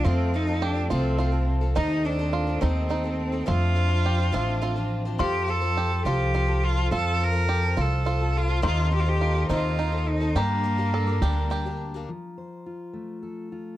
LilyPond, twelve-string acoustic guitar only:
\new Staff \with { instrumentName = "Twelve-string acoustic guitar" } { \time 6/8 \key f \mixolydian \tempo 4. = 70 <f a c' f' a'>8 <a c' f' a'>16 <c' f' a'>8 <c' f' a'>16 <f a c' f' a'>8 <a c' f' a'>16 <c' f' a'>8 <c' f' a'>16 | <c ees c' ees' a' c''>8 <c' ees' a' c''>16 <c' ees' a' c''>8 <c' ees' a' c''>16 <c ees c' ees' a' c''>8 <c' ees' a' c''>16 <c' ees' a' c''>8 <c' ees' a' c''>16 | <f a d' f' c''>8 <a d' f' c''>16 <d' f' c''>8 <d' f' c''>16 <f a d' f' c''>8 <a d' f' c''>16 <d' f' c''>8 <d' f' c''>16 | <f f' a' c''>8 <f f' a' c''>16 <f' a' c''>8 <f' a' c''>16 <f f' a' c''>8 <f f' a' c''>16 <f' a' c''>8 <f' a' c''>16 |
<f f' a' c''>8 <f f' a' c''>16 <f' a' c''>8 <f' a' c''>16 <f f' a' c''>8 <f f' a' c''>16 <f' a' c''>8 <f' a' c''>16 | <c ees c' ees' a' c''>8 <c' ees' a' c''>16 <c' ees' a' c''>8 <c' ees' a' c''>16 <c ees c' ees' a' c''>8 <c' ees' a' c''>16 <c' ees' a' c''>8 <c' ees' a' c''>16 | <g, d g bes d' g'>8 <g bes d' g'>16 <g bes d' g'>8 <g bes d' g'>16 <g, d g bes d' g'>8 <g bes d' g'>16 <g bes d' g'>8 <g bes d' g'>16 | r2. | }